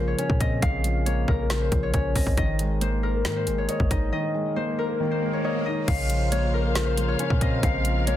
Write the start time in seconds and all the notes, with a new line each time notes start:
Already playing: A#1 C#3 F3 A#3 A#4 C5 F5
0.08 C#5
0.18 C#4 C#5, closed hi-hat
0.30 A#2, kick
0.40 C4 D#5, kick, closed hi-hat
0.62 A#1 C#3 F5, kick, closed hi-hat
0.84 F3, closed hi-hat
1.06 A#3 C#5, closed hi-hat
1.28 A#1 A#4, kick
1.50 C#3, snare, closed hi-hat
1.61 C5
1.72 A#1 F3, kick, closed hi-hat
1.83 C#5
1.94 A#1 C#4 C#5, kick, closed hi-hat
2.16 A#1 C4 D#5, kick, open hi-hat
2.27 kick
2.37 G#1 D#3 D#5, kick, closed hi-hat
2.59 G#3, closed hi-hat
2.81 A#3 C5, closed hi-hat
3.03 A#4
3.25 G#2 D#3, snare, closed hi-hat
3.36 C5
3.47 G#1 G#3, closed hi-hat
3.58 C#5
3.69 C#5 D#5, closed hi-hat
3.80 G#1, kick
3.91 G#1 D#4 D#5, kick, closed hi-hat
4.12 D#3 D#5, swell
4.34 G#3
4.56 A#3 C5
4.79 A#4
5.00 D#3
5.11 C5
5.22 G#3
5.33 C#5
5.44 C#5 D#5
5.66 D#4 D#5
5.88 A#1 C#3 A#3 F4 C5 F5, kick, closed hi-hat, crash
6.10 F3, closed hi-hat
6.32 A#3 C#5, closed hi-hat
6.54 A#4
6.75 C#3, snare, closed hi-hat
6.87 C5
6.97 F3, closed hi-hat
7.08 C#5
7.19 C#4 C#5, closed hi-hat
7.30 A#2, kick
7.41 C4 D#5, kick, closed hi-hat
7.63 A#1 C#3 A#4 C5 F5, kick, closed hi-hat
7.85 F3, closed hi-hat
8.07 A#3 C#5, closed hi-hat